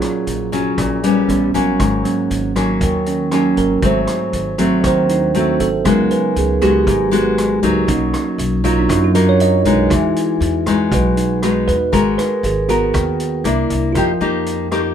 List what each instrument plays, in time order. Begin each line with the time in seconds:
Already playing: nylon-string guitar A#2 F#3 C#4 F4, tine electric piano F#3 C#4 F4 G#4
0.02 cross-stick, closed hi-hat
0.27 upright bass A#1, closed hi-hat
0.52 nylon-string guitar F#3 C#4 F4, kick, closed hi-hat
0.78 upright bass A#1, nylon-string guitar A#2, kick, cross-stick, closed hi-hat
1.04 nylon-string guitar G3 B3 C#4, closed hi-hat
1.28 upright bass A1, tine electric piano G3 B3 C#4, closed hi-hat
1.54 upright bass A1, nylon-string guitar F#3 A#3 C#4, kick, closed hi-hat
1.80 upright bass G#1, nylon-string guitar G#2, kick, cross-stick, closed hi-hat
2.04 tine electric piano F#3 A#3 C#4, closed hi-hat
2.30 upright bass G#1, closed hi-hat
2.56 nylon-string guitar F#3 A#3 C#4, kick, cross-stick, closed hi-hat
2.81 upright bass D#2, nylon-string guitar D#3, tine electric piano A#4, kick, closed hi-hat
3.06 tine electric piano C#4, closed hi-hat
3.31 nylon-string guitar F#3 A#3 C#4, tine electric piano F#3 A#3 C#4 F#4, cross-stick, closed hi-hat
3.57 upright bass G#1, tine electric piano A#4, kick, closed hi-hat
3.82 upright bass G#1, nylon-string guitar G#2 F#3 A3 C4, tine electric piano C5, kick, closed hi-hat
4.07 cross-stick, closed hi-hat
4.33 upright bass G#1, closed hi-hat
4.58 nylon-string guitar F#3 A3 C4, tine electric piano F#3 A3 C4, kick, closed hi-hat
4.84 upright bass D#2, nylon-string guitar D#3, tine electric piano C5, kick, cross-stick, closed hi-hat
5.06 tine electric piano D4, closed hi-hat
5.11 tine electric piano D#4
5.34 nylon-string guitar F#3 A3 C4, tine electric piano F#4, closed hi-hat
5.60 upright bass G#1, tine electric piano A4, kick, closed hi-hat
5.85 upright bass C#2, nylon-string guitar C#3 G#3 B3 F#4, tine electric piano F#3 B3 D#4 A#4, kick, cross-stick, closed hi-hat
6.11 tine electric piano B4, closed hi-hat
6.36 upright bass C#2, tine electric piano G#4, closed hi-hat
6.61 nylon-string guitar G#3 B3 F#4, tine electric piano G4, kick, cross-stick, closed hi-hat
6.87 upright bass G#1, nylon-string guitar G#2, tine electric piano F#4, kick, closed hi-hat
7.11 nylon-string guitar G#3 B3 F#4, closed hi-hat
7.38 cross-stick, closed hi-hat
7.63 upright bass C#2, nylon-string guitar F#3 A#3 D#4, kick, closed hi-hat
7.88 upright bass B1, nylon-string guitar B2, tine electric piano A#3 C#4 D#4, kick, closed hi-hat
8.14 cross-stick, closed hi-hat
8.38 upright bass B1, closed hi-hat
8.64 nylon-string guitar F#3 A#3 D#4, tine electric piano F4, kick, closed hi-hat
8.79 tine electric piano D4
8.89 upright bass F#2, nylon-string guitar F#2, tine electric piano D#4, kick, cross-stick, closed hi-hat
9.04 tine electric piano F#4
9.15 nylon-string guitar F#3 A#3 D#4, tine electric piano A#4, closed hi-hat
9.29 tine electric piano C#5
9.40 tine electric piano D#5, closed hi-hat
9.65 upright bass B1, nylon-string guitar G#3 B3 D#4, kick, closed hi-hat
9.89 upright bass E2, nylon-string guitar E3, tine electric piano G#3 D#4 F#4, kick, cross-stick, closed hi-hat
10.16 closed hi-hat
10.40 upright bass E2, closed hi-hat
10.66 nylon-string guitar G#3 B3 D#4, kick, cross-stick, closed hi-hat
10.91 upright bass B1, nylon-string guitar B2, tine electric piano G#3 D#4 F#4 B4, kick, closed hi-hat
11.17 tine electric piano D#4, closed hi-hat
11.43 nylon-string guitar G#3 B3 D#4, tine electric piano F#4, cross-stick, closed hi-hat
11.68 upright bass E2, tine electric piano B4, kick, closed hi-hat
11.92 upright bass G#1, nylon-string guitar G#3 B3 F#4 A#4, tine electric piano A#4, kick, closed hi-hat
12.18 tine electric piano B4, cross-stick, closed hi-hat
12.43 upright bass G#1, tine electric piano G#4, closed hi-hat
12.68 tine electric piano B3 F#4, nylon-string guitar B3 F#4 A#4, kick, closed hi-hat
12.94 upright bass D#2, nylon-string guitar D#3, kick, cross-stick, closed hi-hat
13.20 closed hi-hat
13.44 upright bass C2, tine electric piano A#3 D4 E4, nylon-string guitar A#3 D4 E4, closed hi-hat
13.70 upright bass C2, kick, closed hi-hat
13.92 upright bass F2, nylon-string guitar F3 A#3, tine electric piano F4 A#4 D#5, kick, cross-stick, closed hi-hat
13.97 nylon-string guitar D#4 G4, tine electric piano G5
14.21 upright bass F2, nylon-string guitar A#3 D#4 G4, closed hi-hat
14.46 closed hi-hat
14.71 nylon-string guitar A#3 D#4 G4, cross-stick, closed hi-hat